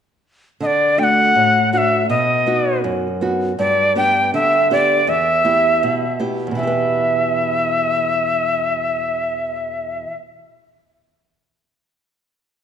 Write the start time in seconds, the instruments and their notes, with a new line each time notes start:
0.60 nylon-string guitar D3, quena D#5
0.66 quena D5
0.98 nylon-string guitar A3 D4 F#4, quena G5
1.03 quena F#5
1.35 nylon-string guitar A2
1.73 nylon-string guitar A3 D4 F#4, quena F#5
1.78 quena E5
2.10 nylon-string guitar B2, quena D#5
2.46 nylon-string guitar B3 D#4 F#4
2.84 nylon-string guitar F#2
3.21 nylon-string guitar B3 D#4 F#4
3.59 nylon-string guitar G2, quena D5
3.95 nylon-string guitar B3 D4 G4, quena G5
4.34 nylon-string guitar D3, quena E5
4.71 nylon-string guitar B3 D4 G4, quena D5
5.07 nylon-string guitar E2, quena E5
5.45 nylon-string guitar B3 E4 G4
5.83 nylon-string guitar B2
6.19 nylon-string guitar B3 E4 G4
6.47 nylon-string guitar E2
6.51 nylon-string guitar B2 E3
6.57 nylon-string guitar B3, quena E5
6.63 nylon-string guitar G4
6.67 nylon-string guitar B4